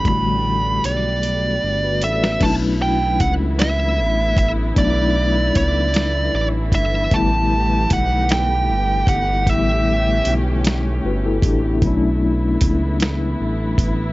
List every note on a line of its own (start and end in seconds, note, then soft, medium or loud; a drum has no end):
0.00 2.36 D3 medium
0.00 2.36 G3 medium
0.00 2.36 A3 medium
0.00 2.37 B3 medium
0.05 0.80 A1 medium
0.05 2.37 G3 medium
0.05 2.38 A3 medium
0.05 2.38 B3 medium
0.05 1.21 B5 medium
0.05 kick medium
0.05 closed hi-hat medium
0.09 1.61 F#4 medium
0.84 1.59 B1 medium
0.84 2.03 D5 medium
0.84 closed hi-hat medium
1.23 closed hi-hat medium
1.63 2.05 G1 medium
1.84 2.02 F#4 soft
1.84 2.02 B4 medium
2.02 2.38 A1 medium
2.02 2.21 A4 medium
2.02 2.21 D5 medium
2.02 2.43 E5 medium
2.02 closed hi-hat medium
2.23 2.60 F#4 soft
2.23 2.60 B4 medium
2.23 snare medium
2.40 3.22 B1 medium
2.40 11.79 E3 medium
2.40 4.73 F#3 medium
2.40 14.13 A3 medium
2.40 4.73 A3 medium
2.40 7.08 B3 medium
2.40 4.72 D4 medium
2.40 7.08 E4 loud
2.40 2.53 A5 loud
2.40 kick medium
2.40 closed hi-hat medium
2.40 crash medium
2.44 4.74 C#4 medium
2.44 4.75 E4 medium
2.82 3.21 G5 medium
3.20 4.01 C#2 medium
3.20 3.32 F#5 loud
3.20 kick medium
3.20 closed hi-hat medium
3.59 4.37 E5 loud
3.59 snare loud
3.59 closed hi-hat medium
3.99 4.34 A1 medium
4.37 4.73 A1 medium
4.37 4.49 E5 medium
4.37 kick loud
4.37 closed hi-hat medium
4.74 5.51 B1 loud
4.74 7.08 F#3 medium
4.74 7.08 A3 medium
4.74 7.07 D4 medium
4.74 kick medium
4.74 closed hi-hat medium
4.78 7.09 B3 medium
4.78 4.85 D#4 medium
4.78 5.56 D5 medium
4.87 7.13 E4 medium
5.55 6.30 C#2 medium
5.55 6.34 D5 medium
5.55 kick medium
5.55 closed hi-hat medium
5.94 snare loud
5.94 closed hi-hat medium
6.34 6.74 A1 medium
6.34 6.45 D5 medium
6.72 7.08 G1 medium
6.72 7.14 E5 medium
6.72 kick medium
6.72 closed hi-hat medium
7.10 7.86 A1 loud
7.10 9.42 D3 medium
7.10 9.43 G3 medium
7.10 9.44 A3 medium
7.10 9.45 B3 medium
7.10 11.78 G4 loud
7.10 7.93 A5 loud
7.10 kick loud
7.10 closed hi-hat medium
7.15 9.45 B3 medium
7.15 9.45 E4 medium
7.90 8.71 B1 medium
7.90 8.31 F#5 medium
7.90 kick medium
7.90 closed hi-hat medium
8.29 9.05 G5 loud
8.29 snare loud
8.29 closed hi-hat medium
8.69 9.04 G1 loud
9.07 9.49 G1 medium
9.07 9.49 F#5 medium
9.07 kick medium
9.07 closed hi-hat medium
9.46 10.22 A1 loud
9.46 11.78 D3 medium
9.46 11.78 G3 medium
9.46 11.79 A3 medium
9.46 11.80 C#4 medium
9.46 10.32 E5 medium
9.46 kick medium
9.46 closed hi-hat medium
9.50 10.64 B3 medium
9.50 10.65 E4 medium
10.25 11.00 B1 loud
10.25 closed hi-hat medium
10.64 snare loud
10.64 closed hi-hat medium
11.05 11.40 G1 medium
11.05 11.24 F#4 medium
11.05 11.24 B4 medium
11.26 11.44 E4 medium
11.26 11.43 A4 medium
11.42 11.84 A1 medium
11.42 11.63 D4 medium
11.42 11.63 G4 medium
11.42 kick medium
11.42 closed hi-hat medium
11.65 12.01 B3 medium
11.65 11.86 E4 medium
11.81 12.57 B1 loud
11.81 11.88 C#3 medium
11.81 14.13 E3 medium
11.81 14.13 F#3 medium
11.81 14.13 A3 medium
11.81 14.13 B3 medium
11.81 14.13 E4 medium
11.81 kick loud
11.81 closed hi-hat medium
11.86 14.13 C#4 medium
11.86 14.13 D4 medium
11.86 14.13 E4 medium
12.61 13.36 C#2 medium
12.61 kick medium
12.61 closed hi-hat medium
13.00 snare loud
13.00 closed hi-hat medium
13.40 13.75 A1 medium
13.78 14.13 A1 medium
13.78 kick medium
13.78 closed hi-hat medium